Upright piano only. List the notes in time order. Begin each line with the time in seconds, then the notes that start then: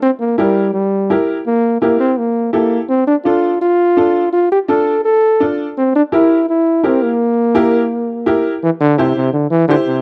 0.38 E4 G4 A#4
1.10 E4 G4 A#4
1.82 E4 G4 A#4
2.53 E4 G4 A4
3.25 D4 F4 A4
3.97 D4 F4 A4
4.68 D4 F4 A4
5.40 D4 F4 A4
6.12 E4 G4 A#4
6.83 E4 G4 A#4
7.55 E4 G4 A#4
8.26 E4 G4 A#4
8.98 E4 G4 C5
9.70 E4 G4 C5